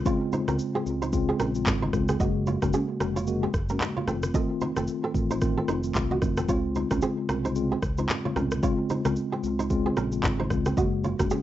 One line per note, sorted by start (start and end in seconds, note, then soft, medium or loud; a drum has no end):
0.00 downlifter medium
0.05 0.44 C#3 medium
0.05 0.44 G#3 medium
0.05 0.44 C4 medium
0.05 0.44 F4 loud
0.05 0.15 F4 medium
0.05 0.14 C#5 medium
0.05 kick loud
0.05 shaker medium
0.32 0.41 D#4 medium
0.32 0.41 C5 medium
0.32 high conga medium
0.32 shaker medium
0.48 0.57 C#2 loud
0.48 0.83 C#3 medium
0.48 0.83 G#3 medium
0.48 0.83 C4 medium
0.48 0.55 C#4 medium
0.48 0.84 F4 medium
0.48 0.54 A#4 medium
0.48 cross-stick medium
0.48 high conga medium
0.48 shaker medium
0.59 shaker medium
0.75 0.81 C4 medium
0.75 0.81 G#4 medium
0.86 1.31 C#2 loud
0.86 1.11 C#3 medium
0.86 1.11 G#3 medium
0.86 1.11 C4 medium
0.86 1.11 F4 medium
0.86 shaker medium
1.02 1.08 D#4 medium
1.02 1.08 C5 medium
1.02 shaker medium
1.13 1.51 C#3 medium
1.13 1.51 G#3 medium
1.13 1.51 C4 medium
1.13 1.52 F4 loud
1.13 kick loud
1.13 shaker medium
1.29 1.35 C4 medium
1.29 1.34 G#4 medium
1.40 1.62 A#1 medium
1.40 1.48 C#4 medium
1.40 1.48 A#4 medium
1.40 cross-stick medium
1.40 shaker medium
1.55 1.90 C#3 medium
1.55 1.90 G#3 medium
1.55 1.91 C4 medium
1.55 1.91 F4 medium
1.55 shaker medium
1.66 1.89 G#1 medium
1.66 kick medium
1.66 clap loud
1.66 high conga medium
1.66 low conga medium
1.66 shaker medium
1.82 1.89 D#4 medium
1.82 1.88 C5 medium
1.82 high conga medium
1.93 2.16 C#2 loud
1.93 2.18 C#3 medium
1.93 2.18 G#3 medium
1.93 2.18 C4 medium
1.93 2.18 F4 medium
1.93 kick medium
1.93 cross-stick medium
1.93 low conga medium
1.93 shaker soft
2.08 2.15 C4 medium
2.08 2.15 G#4 medium
2.08 cross-stick medium
2.08 high conga medium
2.08 shaker medium
2.20 2.55 F#1 loud
2.20 2.58 C#3 loud
2.20 2.59 G#3 medium
2.20 2.59 A#3 medium
2.20 2.59 F#4 loud
2.20 2.29 F#4 medium
2.20 2.28 D#5 medium
2.20 kick loud
2.20 shaker medium
2.47 2.56 F4 medium
2.47 2.55 C#5 medium
2.47 high conga medium
2.47 shaker medium
2.62 2.72 F#1 medium
2.62 2.98 C#3 medium
2.62 2.98 G#3 medium
2.62 2.98 A#3 medium
2.62 2.69 C#4 medium
2.62 2.98 F#4 medium
2.62 2.68 A#4 medium
2.62 kick medium
2.62 cross-stick medium
2.62 high conga medium
2.62 shaker medium
2.73 2.82 C#4 medium
2.73 2.82 G#4 medium
2.73 shaker medium
3.00 3.45 F1 medium
3.00 3.25 C#3 medium
3.00 3.25 G#3 medium
3.00 3.25 A#3 medium
3.00 3.09 C#4 medium
3.00 3.26 F#4 medium
3.00 3.09 A#4 medium
3.00 cross-stick medium
3.00 shaker medium
3.16 3.23 F4 medium
3.16 3.22 C#5 medium
3.16 shaker medium
3.27 3.48 C#3 loud
3.27 3.48 G#3 medium
3.27 3.48 A#3 medium
3.27 3.48 F#4 loud
3.27 shaker medium
3.43 3.49 C4 medium
3.43 3.49 G#4 medium
3.54 3.76 F#1 loud
3.54 kick loud
3.54 cross-stick medium
3.54 shaker medium
3.69 4.05 C#3 medium
3.69 4.05 G#3 medium
3.69 4.05 A#3 medium
3.69 3.76 C#4 medium
3.69 4.05 F#4 medium
3.69 3.76 A#4 medium
3.69 shaker medium
3.81 clap loud
3.81 high conga medium
3.81 low conga medium
3.81 shaker medium
3.97 4.03 F4 medium
3.97 4.02 C#5 medium
3.97 high conga medium
4.07 4.30 F1 medium
4.07 4.32 D#3 medium
4.07 4.32 A3 medium
4.07 4.33 C4 medium
4.07 4.16 C4 medium
4.07 4.33 F4 medium
4.07 4.16 A4 medium
4.07 cross-stick medium
4.07 low conga medium
4.07 shaker soft
4.23 cross-stick loud
4.23 high conga medium
4.23 shaker medium
4.34 4.73 D#3 medium
4.34 4.73 A3 medium
4.34 4.73 C4 medium
4.34 4.73 F4 loud
4.34 4.43 A4 medium
4.34 4.43 D#5 medium
4.34 kick loud
4.34 shaker medium
4.61 4.70 D#4 medium
4.61 4.69 C5 medium
4.61 high conga medium
4.61 shaker medium
4.76 4.86 F1 loud
4.76 5.12 D#3 medium
4.76 5.12 A3 medium
4.76 5.12 C4 medium
4.76 4.83 C4 medium
4.76 5.12 F4 medium
4.76 4.83 A4 medium
4.76 cross-stick medium
4.76 high conga medium
4.76 shaker medium
4.87 shaker medium
5.04 5.10 C4 medium
5.04 5.10 A4 medium
5.14 5.59 A1 medium
5.14 5.39 D#3 medium
5.14 5.40 A3 medium
5.14 5.40 C4 medium
5.14 5.40 F4 medium
5.14 kick medium
5.14 shaker medium
5.31 5.37 D#4 medium
5.31 5.36 C5 medium
5.31 shaker medium
5.41 5.80 D#3 medium
5.41 5.80 A3 medium
5.41 5.80 C4 medium
5.41 5.80 F4 loud
5.41 kick medium
5.41 cross-stick medium
5.41 shaker medium
5.58 5.64 C4 medium
5.58 5.63 A4 medium
5.68 5.91 F1 medium
5.68 5.77 D#4 medium
5.68 5.77 C5 medium
5.68 cross-stick medium
5.68 shaker medium
5.83 6.19 D#3 medium
5.83 6.19 A3 medium
5.83 6.19 C4 medium
5.83 6.19 F4 medium
5.83 shaker medium
5.95 6.17 C2 medium
5.95 kick medium
5.95 clap loud
5.95 high conga medium
5.95 low conga medium
5.95 shaker medium
6.11 6.17 F#4 medium
6.11 6.17 D#5 medium
6.11 high conga medium
6.21 6.44 F1 medium
6.21 6.47 D#3 medium
6.21 6.47 A3 medium
6.21 6.47 C4 medium
6.21 6.47 F4 medium
6.21 kick medium
6.21 cross-stick medium
6.21 low conga medium
6.21 shaker soft
6.37 6.44 C4 medium
6.37 6.44 A4 medium
6.37 cross-stick loud
6.37 high conga medium
6.37 shaker medium
6.48 6.84 C#2 loud
6.48 6.87 C#3 medium
6.48 6.87 G#3 medium
6.48 6.87 C4 medium
6.48 6.87 F4 loud
6.48 6.58 F4 medium
6.48 6.57 C#5 medium
6.48 kick loud
6.48 shaker medium
6.75 6.84 D#4 medium
6.75 6.84 C5 medium
6.75 high conga medium
6.75 shaker medium
6.91 7.00 C#2 loud
6.91 7.26 C#3 medium
6.91 7.26 G#3 medium
6.91 7.26 C4 medium
6.91 6.98 C#4 medium
6.91 7.26 F4 medium
6.91 6.97 A#4 medium
6.91 kick medium
6.91 cross-stick medium
6.91 high conga medium
6.91 shaker medium
7.02 7.11 C4 medium
7.02 7.10 G#4 medium
7.02 shaker medium
7.29 7.73 C2 medium
7.29 7.54 C#3 medium
7.29 7.54 G#3 medium
7.29 7.54 C4 medium
7.29 7.38 C#4 medium
7.29 7.54 F4 medium
7.29 7.37 A#4 medium
7.29 cross-stick loud
7.29 shaker medium
7.45 7.51 D#4 medium
7.45 7.51 C5 medium
7.45 shaker medium
7.55 7.77 C#3 medium
7.55 7.77 G#3 medium
7.55 7.77 C4 medium
7.55 7.77 F4 loud
7.55 shaker medium
7.72 7.78 C4 medium
7.72 7.77 G#4 medium
7.82 8.05 C#2 medium
7.82 kick loud
7.82 cross-stick medium
7.82 shaker medium
7.98 8.33 C#3 medium
7.98 8.33 G#3 medium
7.98 8.33 C4 medium
7.98 8.05 D#4 medium
7.98 8.34 F4 medium
7.98 8.04 C5 medium
7.98 shaker medium
8.09 clap loud
8.09 high conga medium
8.09 low conga medium
8.09 shaker medium
8.25 8.32 F4 medium
8.25 8.31 C#5 medium
8.25 high conga medium
8.36 8.58 C2 loud
8.36 8.61 C#3 medium
8.36 8.61 G#3 medium
8.36 8.61 C4 medium
8.36 8.45 C#4 medium
8.36 8.61 F4 medium
8.36 8.44 A#4 medium
8.36 cross-stick medium
8.36 low conga medium
8.36 shaker medium
8.51 cross-stick loud
8.51 high conga medium
8.51 shaker medium
8.63 9.01 C#3 medium
8.63 9.01 G#3 medium
8.63 9.01 C4 medium
8.63 9.02 F4 loud
8.63 8.72 F4 medium
8.63 8.71 C#5 medium
8.63 kick loud
8.63 shaker medium
8.90 8.99 D#4 medium
8.90 8.98 C5 medium
8.90 high conga medium
8.90 shaker medium
9.05 9.15 C#2 medium
9.05 9.40 C#3 medium
9.05 9.41 G#3 medium
9.05 9.41 C4 medium
9.05 9.12 C#4 medium
9.05 9.41 F4 medium
9.05 9.11 A#4 medium
9.05 cross-stick medium
9.05 high conga medium
9.05 shaker medium
9.16 shaker medium
9.32 9.39 C4 medium
9.32 9.38 G#4 medium
9.43 9.88 C#2 loud
9.43 9.68 C#3 medium
9.43 9.68 G#3 medium
9.43 9.68 C4 medium
9.43 9.68 F4 medium
9.43 shaker medium
9.59 9.65 D#4 medium
9.59 9.65 C5 medium
9.59 shaker medium
9.70 10.09 C#3 medium
9.70 10.09 G#3 medium
9.70 10.09 C4 medium
9.70 10.09 F4 loud
9.70 kick medium
9.70 shaker medium
9.86 9.92 C4 medium
9.86 9.92 G#4 medium
9.97 10.19 A#1 medium
9.97 10.06 C#4 medium
9.97 10.05 A#4 medium
9.97 cross-stick medium
9.97 shaker medium
10.12 10.48 C#3 medium
10.12 10.48 G#3 medium
10.12 10.48 C4 medium
10.12 10.48 F4 medium
10.12 shaker medium
10.24 10.46 G#1 loud
10.24 kick medium
10.24 clap loud
10.24 high conga medium
10.24 low conga medium
10.24 shaker medium
10.40 10.46 D#4 medium
10.40 10.45 C5 medium
10.40 high conga medium
10.50 10.73 C#2 medium
10.50 10.75 C#3 medium
10.50 10.75 G#3 medium
10.50 10.75 C4 medium
10.50 10.76 F4 medium
10.50 kick medium
10.50 cross-stick medium
10.50 low conga medium
10.50 shaker medium
10.66 10.73 C4 medium
10.66 10.72 G#4 medium
10.66 cross-stick medium
10.66 high conga medium
10.66 shaker medium
10.77 11.12 F#1 loud
10.77 11.16 C#3 medium
10.77 11.16 G#3 medium
10.77 11.16 A#3 medium
10.77 11.16 F#4 loud
10.77 10.86 F#4 medium
10.77 10.85 D#5 medium
10.77 kick loud
10.77 shaker medium
11.04 11.13 F4 medium
11.04 11.12 C#5 medium
11.04 high conga medium
11.04 shaker medium
11.19 11.29 F#1 loud
11.19 11.42 C#3 medium
11.19 11.42 G#3 medium
11.19 11.42 A#3 medium
11.19 11.26 C#4 medium
11.19 11.42 F#4 medium
11.19 11.26 A#4 medium
11.19 kick medium
11.19 cross-stick medium
11.19 high conga medium
11.19 shaker medium
11.30 11.40 C#4 medium
11.30 11.39 G#4 medium
11.30 shaker medium